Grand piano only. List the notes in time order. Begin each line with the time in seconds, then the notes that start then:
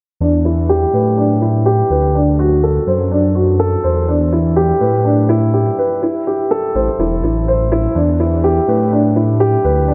0.21 D4
0.45 E4
0.69 G4
0.94 B4
1.17 D4
1.42 E4
1.66 G4
1.91 B4
2.15 D4
2.39 F#4
2.63 A4
2.87 C5
3.11 D4
3.35 F#4
3.60 A4
3.84 C5
4.08 D4
4.33 E4
4.56 G4
4.81 B4
5.05 D4
5.29 E4
5.54 G4
5.78 B4
6.03 E4
6.27 G4
6.51 A4
6.75 C5
7.00 E4
7.24 E4
7.48 C5
7.72 E4
7.95 D4
8.20 E4
8.44 G4
8.68 B4
8.92 D4
9.16 E4
9.40 G4
9.64 B4
9.88 D4